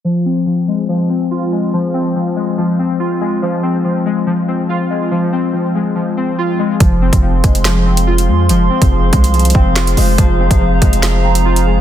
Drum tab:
HH |--------------------------------|--------------------------------|--------------------------------|--------------------------------|
CP |--------------------------------|--------------------------------|--------------------------------|--------------------------------|
SD |--------------------------------|--------------------------------|--------------------------------|--------------------------------|
BD |--------------------------------|--------------------------------|--------------------------------|--------------------------------|

HH |x-----x-----x-x-x-----x---x-----|x-----x-----x-x-xxxx------x-o---|x-----x-----x-x-x-----x---x-----|
CP |----------------x---------------|------------------------x-------|----------------x---------------|
SD |----------------o---------------|------------------------o-------|----------------o---------------|
BD |o-----o-----o-------------------|------o-----o-------o-----------|o-----o-----o-------------------|